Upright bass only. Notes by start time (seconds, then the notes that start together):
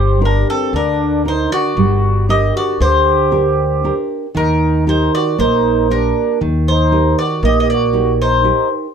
Already playing: G1
0.73 D2
1.77 G1
2.80 D2
4.36 D#2
5.39 A#1
6.41 D#2
7.43 A#1